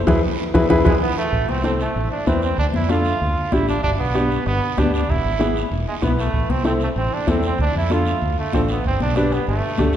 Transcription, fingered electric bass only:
0.08 E2
0.55 E2
0.71 E2
0.86 E2
1.33 A1
1.49 C2
1.96 A1
2.27 E2
2.58 D2
2.75 F2
3.22 D2
3.52 A1
3.84 G1
3.99 B1
4.46 G1
4.78 D2
5.09 E1
5.24 G#1
5.71 E1
6.03 B1
6.34 A1
6.50 C2
6.96 A1
7.27 E2
7.59 D2
7.75 F2
8.22 D2
8.54 A1
8.85 G1
9.00 B1
9.48 G1
9.79 D2

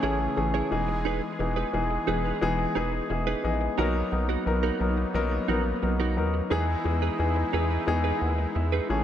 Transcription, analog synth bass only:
0.04 A1
0.38 A1
0.72 E1
1.40 E1
1.74 E1
2.08 E1
2.42 E1
2.76 E1
3.10 E1
3.44 A#1
3.79 B1
4.13 B1
4.46 B1
4.81 B1
5.15 B1
5.49 A#1
5.83 B1
6.17 D#2
6.51 E2
6.85 E2
7.20 E2
7.54 E2
7.88 E2
8.22 D#2
8.56 E2
8.90 A1

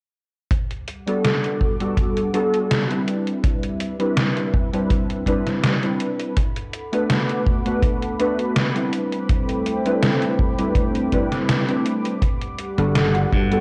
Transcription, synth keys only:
1.06 G3 B3 D4 F#4 A4
1.80 G3 B3 D4 F#4 A4
2.33 G3 B3 D4 F#4 A4
2.89 G3 C4 D4 E4 B4
3.99 G3 C4 D4 E4 B4
4.73 G3 C4 D4 E4 B4
5.26 G3 C4 D4 E4 B4
5.82 G3 C4 D4 E4 B4
6.92 A3 B3 D4 F#4 B4
7.65 A3 B3 D4 F#4 B4
8.19 A3 B3 D4 F#4 B4
8.74 G3 C4 D4 E4 B4
9.85 G3 C4 D4 E4 B4
10.58 G3 C4 D4 E4 B4
11.12 G3 C4 D4 E4 B4
11.68 G3 C4 D4 E4 B4
12.77 G3 B3 D4 F#4 A4
13.50 G3 B3 D4 F#4 A4

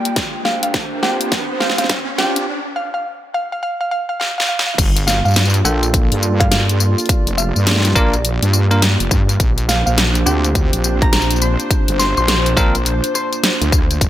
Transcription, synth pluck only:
0.45 F5
0.63 F5
1.03 G5
1.60 F5
1.78 F5
2.18 G5
2.76 F5
2.94 F5
3.34 F5
3.52 F5
3.63 F5
3.81 F5
3.91 F5
4.09 F5
4.20 F5
4.38 F5
4.49 F5
4.67 F5
5.07 F5
5.25 F5
5.65 G5
6.40 F5
6.51 F5
7.38 F5
7.96 D5
9.69 F5
9.86 F5
10.26 G5
11.02 A#5
11.13 A#5
11.42 C6
11.99 C6
12.18 C6
12.29 C6
13.15 C6

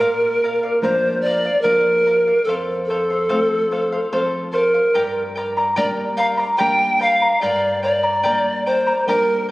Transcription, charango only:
0.00 A#4 D5 F5
0.43 A#4 D5 F5
0.63 D5 F5
0.83 A#4 D5 F5
1.25 A#4 D5 F5
1.45 D5 F5
1.64 A#4 D5 F5
2.06 A#4 D5 F5
2.27 D5 F5
2.47 A4 C5 F5
2.90 A4 C5 F5
3.10 C5 F5
3.29 A4 C5 F5
3.72 A4 C5 F5
3.92 C5 F5
4.12 A4 C5 F5
4.53 A4 C5 F5
4.74 C5 F5
4.94 G4 A#4 D5 G5 A#5
5.35 A#4 D5 G5 A#5
5.57 A#4 D5 A#5
5.76 G4 A#4 D5 G5 A#5
6.17 A#4 D5 G5 A#5
6.37 A#4 D5 A#5
6.58 G4 A#4 D5 G5 A#5
6.99 A#4 D5 G5 A#5
7.22 A#4 D5 A#5
7.41 G4 A#4 D5 G5 A#5
7.83 A#4 D5 G5 A#5
8.03 A#4 D5 A#5
8.23 G4 A#4 D5 G5 A#5
8.66 A#4 D5 G5 A#5
8.87 A#4 D5 A#5
9.08 G4 A#4 D5 G5 A#5

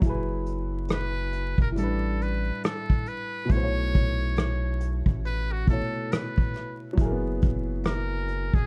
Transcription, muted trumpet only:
0.93 B4
1.62 A#4
1.79 A4
2.22 B4
2.65 A4
3.08 B4
3.52 C#5
5.26 B4
5.52 F#4
5.69 A4
6.12 B4
7.86 A#4
8.54 G#4

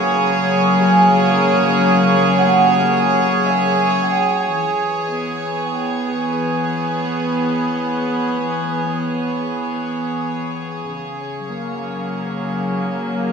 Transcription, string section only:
Already playing: C#3 F#3 A#3 G#4 C#5
4.54 E3
5.10 B3
10.90 C#3
11.37 F#3
11.51 A#3

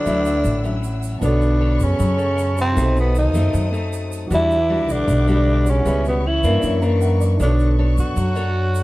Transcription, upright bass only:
0.06 D2
0.44 A1
1.21 B1
1.80 F#2
1.99 F#2
2.76 B1
3.34 F#2
3.53 F#2
4.31 E2
4.89 B1
5.08 B1
5.86 C#2
6.43 G2
6.62 F#2
7.40 B1
7.97 F#2
8.16 F#2

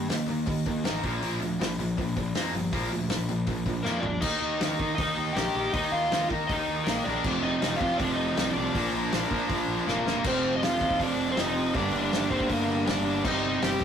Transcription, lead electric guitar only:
3.83 A#3 A#4
4.00 D4 D5
4.21 D#4 D#5
4.95 D#4 D#5
5.33 G4 G5
5.73 D#4 D#5
5.92 F4 F5
6.48 D#5
6.52 D#4
6.84 A#4
6.88 A#3
7.04 D5
7.08 D4
7.42 D#4 D#5
7.77 F5
7.81 F4
7.98 D4 D5
8.14 D#4 D#5
8.53 D4 D5
9.87 A#3 A#4
10.26 C4 C5
10.56 D#5
10.64 F4 F5
11.02 D4 D5
11.31 C4 C5
11.40 D#4 D#5
11.75 D4 D5
12.01 D4 D5
12.30 C4 C5
12.48 A#3 A#4
12.86 D4 D5
13.25 D#4 D#5
13.62 G4 G5

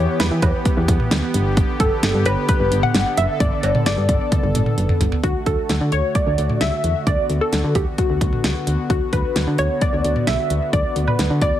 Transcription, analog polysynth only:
Already playing: C#5
0.20 B4
0.43 B4
1.80 A4
2.26 B4
2.49 B4
2.83 F#5
3.18 E5
3.40 D5
3.86 D5
5.24 F#4
5.46 A4
5.92 C#5
6.15 D5
6.61 E5
7.07 D5
7.41 A4
7.76 G4
7.99 F#4
8.90 F#4
9.13 B4
9.59 C#5
9.82 D5
10.27 E5
10.73 D5
11.08 B4
11.42 D5

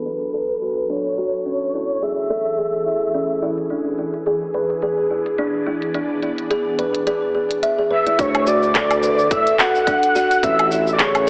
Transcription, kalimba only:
0.06 B4
0.34 A4
0.62 F#4
0.90 D4
1.18 F#4
1.46 C#4
1.74 E4
2.02 G#4
2.30 A4
2.58 G#4
2.86 E4
3.14 C#4
3.42 E4
3.70 D4
3.98 E4
4.27 G#4
4.54 B4
4.83 G#4
5.11 E4
5.39 D4
5.67 E4
5.95 D4
6.23 E4
6.51 G#4
6.79 B4
7.07 G#4
7.35 G#4
7.63 E5
7.79 G#4
7.91 B4
8.06 E4
8.19 D4
8.47 F#4
8.75 A4
9.03 B4
9.31 A4
9.59 F#4
9.87 D4
10.15 F#4
10.43 C#4
10.71 E4
10.99 G#4

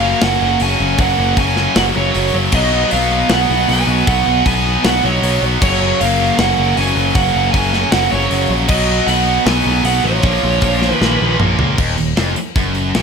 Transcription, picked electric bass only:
Already playing: F#1
0.22 F#1
0.41 F#1
0.60 F#1
0.80 F#1
0.99 F#1
1.18 F#1
1.77 F#1
1.96 F#1
2.16 F#1
2.34 F#1
2.53 B1
2.93 B1
3.30 B1
3.50 B1
3.69 B1
3.87 B1
4.07 B1
4.26 B1
4.46 B1
4.85 B1
5.04 B1
5.22 B1
5.42 B1
5.62 F#1
6.01 F#1
6.39 F#1
6.58 F#1
6.77 F#1
6.96 F#1
7.15 F#1
7.35 F#1
7.54 F#1
7.92 F#1
8.12 F#1
8.31 F#1
8.49 A#1
8.69 B1
9.07 B1
9.46 B1
9.65 B1
9.84 B1
10.04 A1
10.23 A#1
10.43 A#1
10.62 A#1
11.01 A#1
11.21 A#1
11.40 A#1
11.59 C#2
11.78 D#1
11.98 D#1
12.17 F1
12.37 muted picked electric bass stroke
12.56 F#1
12.95 A#1

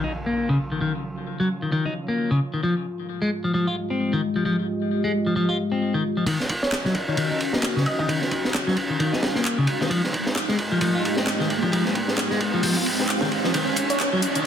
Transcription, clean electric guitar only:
0.04 D#4
0.26 A#3
0.49 C#3
0.72 D#3
0.81 D#3
1.40 F#3
1.62 D#3
1.72 D#3
1.85 D#4
2.08 A#3
2.31 C#3
2.54 D#3
2.63 F3
3.22 G#3
3.44 F3
3.54 F3
3.67 F4
3.90 C4
4.13 D#3
4.36 F3
4.45 F3
5.04 G#3
5.26 F3
5.36 F3
5.49 F4
5.72 C4
5.94 D#3
6.17 F3
6.27 D#3
6.85 F#3
7.08 D#3
7.18 D#3
7.31 D#4
7.53 A#3
7.76 C#3
7.99 D#3
8.08 D#3
8.67 F#3
8.90 D#3
8.99 D#3
9.13 D#4
9.35 A#3
9.58 C#3
9.81 D#3
9.90 F3
10.49 G#3
10.72 F3
10.81 F3
10.95 F4
11.17 C4
11.40 D#3
11.63 F3
11.72 F3
12.31 G#3
12.54 F3
12.63 F3
12.76 F4
12.99 C4
13.22 D#3
13.44 F3
13.54 D#3
14.13 F#3
14.36 D#3

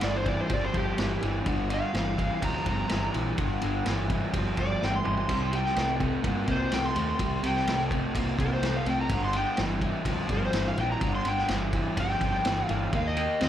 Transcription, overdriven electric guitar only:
0.03 G2 E3
0.25 G2 E3
0.50 G2 F3
0.73 G2 F3
0.97 G2 E3
1.22 G2 E3
1.46 G2 D3
1.69 G2 D3
1.94 G2 E3
2.18 G2 E3
2.42 G2 F3
2.65 G2 F3
2.89 G2 E3
3.13 G2 E3
3.38 G2 D3
3.61 G2 D3
3.85 G2 E3
4.10 G2 E3
4.34 G2 F3
4.58 G2 F3
4.81 G2 E3
5.05 G2 E3
5.30 C3 G3
5.53 C3 G3
5.76 C3 A3
6.01 C3 A3
6.24 C3 A#3
6.48 C3 A#3
6.72 C3 A3
6.95 C3 A3
7.20 C3 G3
7.43 C3 G3
7.68 C3 A3
7.92 C3 A3
8.15 C3 A#3
8.39 C3 A#3
8.62 C3 A3
8.87 C3 A3
9.11 G2 D3
9.36 G2 D3
9.59 G2 E3
9.83 G2 E3
10.07 G2 F3
10.31 G2 F3
10.54 G2 E3
10.79 G2 E3
11.03 G2 D3
11.26 G2 D3
11.51 G2 E3
11.75 G2 E3
11.98 G2 F3
12.23 G2 F3
12.46 G2 E3
12.69 G2 E3
12.94 D#3 A#3
13.17 D#3 A#3
13.41 D#3 C4

